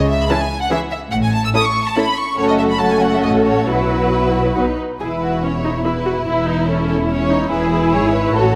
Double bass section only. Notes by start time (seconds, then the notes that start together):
Already playing: C#2
1.13 A1
2.38 F#1
3.24 A1
3.68 B1
4.57 B1
5.01 E1
6.29 E1
7.52 E1
7.94 G#1
8.36 A1